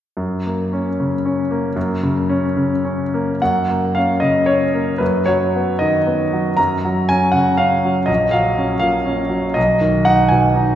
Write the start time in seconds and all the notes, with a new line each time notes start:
0.17 F#2
0.46 A#3
0.73 C#4
1.00 C#3
1.25 C#4
1.51 A#3
1.76 F#2
2.03 C#3
2.29 C#4
2.57 C#3
2.85 C#4
3.14 A#3
3.42 F#2 F#5
3.70 A#3
3.95 C#4 F5
4.20 C#3 D#5
4.46 C#4 C#5
4.74 A#3
4.98 F#2 B4
5.26 F#3 C#5
5.56 B3
5.79 D#3 D#5
6.07 B3
6.33 F#3
6.57 F#2 A#5
6.85 F#3
7.09 C#4 G#5
7.32 C#3 F#5
7.57 C#4 F5
7.85 F#3
8.06 A#1 D#5
8.31 F#3 F5
8.58 C#4
8.80 A#2 F5
9.06 C#4
9.29 F#3
9.54 B1 D#5
9.81 D#3
10.05 D#4 F#5
10.29 B2 G#5
10.56 D#4